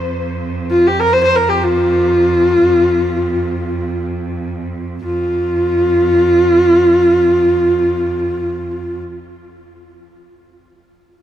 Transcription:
Already playing: cello F2
0.70 horsehead fiddle F4
0.87 horsehead fiddle G4
1.00 horsehead fiddle A#4
1.13 horsehead fiddle C5
1.24 horsehead fiddle C5
1.36 horsehead fiddle A#4
1.49 horsehead fiddle G4
1.63 horsehead fiddle F4
5.03 cello F2, horsehead fiddle F4

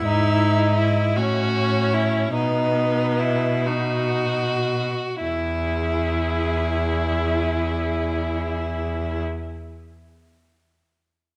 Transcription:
Already playing: viola E4
0.04 cello G#2, violin D#4 E5
0.59 violin D#5
0.77 violin E4
1.16 cello A2, viola C#4, violin F#4 C#5
1.94 violin E4
2.34 cello B2, viola B3, violin D#4 D#5
3.19 violin E4
3.66 viola D#4, violin F#4 D#5
5.22 cello E2, violin E4 G#4, viola E4

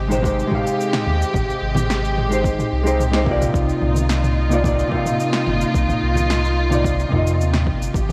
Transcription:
Already playing: sub bass G#1, string section C3 G#3 G4
0.08 hollow-body jazz guitar G#3 D#4 G4 C5, mid tom, cabasa
0.22 hollow-body jazz guitar G#3 D#4 G4 C5, kick, cabasa
0.39 cabasa
0.47 hollow-body jazz guitar G#3 D#4
0.51 hollow-body jazz guitar G4 F5, kick, mid tom
0.67 cabasa
0.81 cabasa
0.93 snare, mid tom, cabasa
1.06 sub bass D#2, high conga
1.22 cabasa
1.34 sub bass G#1, kick, mid tom, cabasa
1.50 cabasa
1.62 sub bass G#1
1.74 mid tom, high conga, low conga, cabasa
1.90 snare, cabasa
2.05 cabasa
2.17 mid tom
2.29 hollow-body jazz guitar G#3 D#4 G4, cabasa
2.33 hollow-body jazz guitar C5
2.44 kick, cabasa
2.59 mid tom, cabasa
2.72 sub bass C2
2.84 hollow-body jazz guitar G#3 D#4 G4 C5, cabasa
3.00 mid tom, cabasa
3.12 hollow-body jazz guitar G#3 D#4 G4, snare, cabasa
3.16 hollow-body jazz guitar C5
3.23 hollow-body jazz guitar C3 A#3 D#4, kick
3.29 hollow-body jazz guitar F4 D5
3.41 mid tom, cabasa
3.54 sub bass C2, string section A#3 D#4 F4, kick, cabasa
3.69 cabasa
3.82 sub bass C2, mid tom
3.95 high conga, cabasa
4.10 snare, cabasa
4.24 mid tom, cabasa
4.49 hollow-body jazz guitar C3 A#3 D#4 F4, cabasa
4.53 hollow-body jazz guitar D5
4.63 hollow-body jazz guitar C3 A#3 D#4 F4 D5, kick, mid tom, cabasa
4.79 cabasa
4.87 hollow-body jazz guitar C3 A#3
4.92 hollow-body jazz guitar D#4 F4 F5, kick
5.06 mid tom, cabasa
5.20 cabasa
5.33 snare, cabasa
5.47 sub bass G1, mid tom, high conga
5.61 cabasa
5.74 sub bass C2, kick, cabasa
5.89 mid tom, cabasa
6.02 sub bass C2
6.15 high conga, low conga, cabasa
6.30 snare, mid tom, cabasa
6.45 cabasa
6.69 hollow-body jazz guitar C3 A#3 D#4 F4 D5, mid tom, cabasa
6.84 kick, cabasa
6.99 cabasa
7.08 sub bass F2, hollow-body jazz guitar C3 A#3 D#4, kick
7.12 hollow-body jazz guitar F4 D#5, mid tom
7.27 cabasa
7.39 sub bass D#2, cabasa
7.54 snare, mid tom, cabasa
7.67 sub bass G1, kick
7.81 sub bass G1, cabasa
7.94 sub bass G#1, string section C3 G#3 G4, kick, high bongo, cabasa
8.09 mid tom

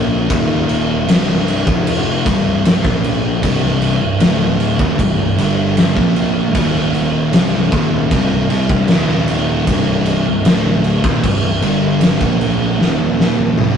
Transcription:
Already playing: fingered electric bass A#1, distorted electric guitar A#2 F3 A#3
0.28 fingered electric bass D#1, distorted electric guitar D#2 A#2 D#3, kick, crash
0.69 crash
1.07 fingered electric bass C1, distorted electric guitar C2 G2 C3, snare, crash
1.48 crash
1.65 fingered electric bass F1, distorted electric guitar F2 C3 F3, kick
1.87 crash
2.25 fingered electric bass C1, distorted electric guitar C2 G2 C3, kick, crash
2.65 snare, crash
2.83 fingered electric bass A#1, distorted electric guitar A#2 F3 A#3, kick
3.04 crash
3.42 fingered electric bass C1, distorted electric guitar C2 G2 C3, kick, crash
3.64 snare
3.82 crash
4.01 fingered electric bass C1, distorted electric guitar C2 G2
4.20 fingered electric bass D1, distorted electric guitar D2 A2 D3, snare, crash
4.60 crash
4.79 fingered electric bass D#1, distorted electric guitar D#2 A#2, kick
4.99 fingered electric bass C1, distorted electric guitar C2 G2, kick, crash
5.19 fingered electric bass C1, distorted electric guitar C2 G2
5.38 fingered electric bass G1, distorted electric guitar G2 D3 G3, crash
5.77 snare, crash
5.96 fingered electric bass A#1, distorted electric guitar A#2 F3 A#3, kick
6.16 crash
6.54 fingered electric bass D#1, distorted electric guitar D#2 A#2 D#3, kick, crash
6.75 snare
6.94 crash
7.33 fingered electric bass C1, distorted electric guitar C2 G2 C3, snare, crash
7.72 fingered electric bass D#1, distorted electric guitar D#2 A#2 D#3, kick, crash
8.11 fingered electric bass C1, distorted electric guitar C2 G2 C3, kick, crash
8.50 fingered electric bass C2, distorted electric guitar C3 G3, crash
8.69 fingered electric bass C1, distorted electric guitar C2 G2, kick
8.88 fingered electric bass D#1, distorted electric guitar D#2 A#2 D#3, snare, crash
9.28 crash
9.67 fingered electric bass C1, distorted electric guitar C2 G2 C3, kick, crash
10.06 crash
10.26 fingered electric bass C1, distorted electric guitar C2 G2
10.45 fingered electric bass D1, distorted electric guitar D2 A2 D3, snare, crash
10.84 crash
11.04 fingered electric bass D#1, distorted electric guitar D#2 A#2, kick
11.23 fingered electric bass C1, distorted electric guitar C2 G2, kick, crash
11.43 fingered electric bass C1, distorted electric guitar C2 G2
11.62 fingered electric bass G1, distorted electric guitar G2 D3 G3, crash
12.01 snare, crash
12.20 fingered electric bass A#1, distorted electric guitar A#2 F3 A#3, kick
12.41 crash
12.78 fingered electric bass D#1, distorted electric guitar D#2 A#2 D#3, snare
13.20 snare
13.56 fingered electric bass C1, distorted electric guitar C2 G2 C3, high tom

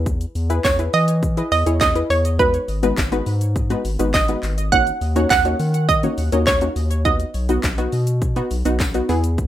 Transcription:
Already playing: analog synth bass E2, synth stab E4 G#4 B4
0.06 kick, shaker
0.21 closed hi-hat, shaker
0.35 analog synth bass E2, open hi-hat, shaker
0.50 synth stab E4 G#4 B4, closed hi-hat, shaker
0.64 analog synth bass E2, synth pluck C#5, kick, snare, clap, tambourine, shaker
0.79 synth stab E4 G#4 B4, closed hi-hat, shaker
0.93 analog synth bass E3, synth pluck D#5, open hi-hat, shaker
1.08 closed hi-hat, shaker
1.23 kick, shaker
1.37 synth stab E4 G#4 B4, closed hi-hat, shaker
1.52 analog synth bass E2, synth pluck D#5, open hi-hat, shaker
1.66 analog synth bass E2, synth stab E4 G#4 C#5, closed hi-hat, shaker
1.81 synth pluck D#5, kick, snare, clap, tambourine, shaker
1.95 synth stab E4 G#4 B4, closed hi-hat, shaker
2.10 analog synth bass E2, synth pluck C#5, open hi-hat, shaker
2.25 closed hi-hat, shaker
2.39 synth stab G#3 B3 D#4 F#4 B4, synth pluck B4, kick, shaker
2.54 closed hi-hat, shaker
2.68 analog synth bass G#1, open hi-hat, shaker
2.83 synth stab G#3 B3 D#4 F#4 B4, closed hi-hat, shaker
2.97 analog synth bass G#1, kick, snare, clap, tambourine, shaker
3.12 synth stab G#3 B3 D#4 F#4 B4, closed hi-hat, shaker
3.26 analog synth bass G#2, open hi-hat, shaker
3.41 closed hi-hat, shaker
3.56 kick, shaker
3.70 synth stab G#3 B3 D#4 F#4 B4, closed hi-hat, shaker
3.85 analog synth bass G#1, open hi-hat, shaker
3.99 analog synth bass G#1, synth stab G#3 B3 D#4 F#4 B4, closed hi-hat, shaker
4.14 synth pluck D#5, kick, snare, clap, tambourine, shaker
4.28 synth stab G#3 B3 D#4 F#4 B4, closed hi-hat, shaker
4.43 analog synth bass G#1, clap, open hi-hat, shaker
4.58 closed hi-hat, shaker
4.72 synth stab A#3 C#4 D#4 F#4 C#5, synth pluck F#5, kick, shaker
4.87 closed hi-hat, shaker
5.01 analog synth bass D#2, open hi-hat, shaker
5.16 synth stab A#3 C#4 D#4 F#4 C#5, closed hi-hat, shaker
5.30 analog synth bass D#2, synth pluck F#5, kick, snare, clap, tambourine, shaker
5.45 synth stab A#3 C#4 D#4 F#4 C#5, closed hi-hat, shaker
5.60 analog synth bass D#3, open hi-hat, shaker
5.74 closed hi-hat, shaker
5.89 synth pluck D#5, kick, shaker
6.03 synth stab A#3 C#4 D#4 F#4 C#5, closed hi-hat, shaker
6.18 analog synth bass D#2, open hi-hat, shaker
6.32 analog synth bass D#2, synth stab A#3 C#4 D#4 F#4 C#5, closed hi-hat, shaker
6.47 synth pluck C#5, kick, snare, clap, tambourine, shaker
6.61 synth stab A#3 C#4 D#4 F#4 C#5, closed hi-hat, shaker
6.76 analog synth bass D#2, open hi-hat, shaker
6.91 closed hi-hat, shaker
7.05 synth stab B3 D#4 F#4, synth pluck D#5, kick, shaker
7.20 closed hi-hat, shaker
7.34 analog synth bass B1, open hi-hat, shaker
7.49 synth stab B3 D#4 F#4, closed hi-hat, shaker
7.63 analog synth bass B1, kick, snare, clap, tambourine, shaker
7.78 synth stab B3 D#4 F#4, closed hi-hat, shaker
7.92 analog synth bass B2, open hi-hat, shaker
8.07 closed hi-hat, shaker
8.22 kick, shaker
8.36 synth stab B3 D#4 F#4, closed hi-hat, shaker
8.51 analog synth bass B1, open hi-hat, shaker
8.65 analog synth bass B1, synth stab B3 D#4 F#4, closed hi-hat, shaker
8.80 kick, snare, clap, tambourine, shaker
8.94 synth stab B3 D#4 F#4, closed hi-hat, shaker
9.09 analog synth bass E2, synth stab B3 E4 G#4, open hi-hat, shaker
9.24 closed hi-hat, shaker
9.38 kick, shaker

